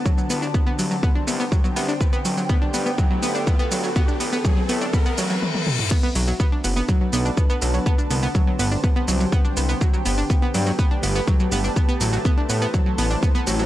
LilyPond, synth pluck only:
\new Staff \with { instrumentName = "Synth pluck" } { \time 4/4 \key b \phrygian \tempo 4 = 123 fis16 fis16 b16 d'16 b16 b16 fis16 fis16 b16 d'16 b16 b16 fis16 fis16 b16 d'16 | b16 b16 fis16 fis16 b16 d'16 b16 b16 fis16 fis16 b16 d'16 b16 b16 fis16 fis16 | b16 d'16 b16 b16 fis16 fis16 b16 d'16 b16 b16 fis16 fis16 r4 | b16 b16 fis16 fis16 b16 d'16 b16 b16 fis16 fis16 b16 d'16 b16 b16 fis16 fis16 |
b16 d'16 b16 b16 fis16 fis16 b16 d'16 b16 b16 fis16 fis16 b16 d'16 b16 b16 | fis16 fis16 b16 d'16 b16 b16 fis16 fis16 b16 d'16 b16 b16 fis16 fis16 b16 d'16 | b16 b16 fis16 fis16 b16 d'16 b16 b16 fis16 fis16 b16 d'16 b16 b16 fis16 fis16 | }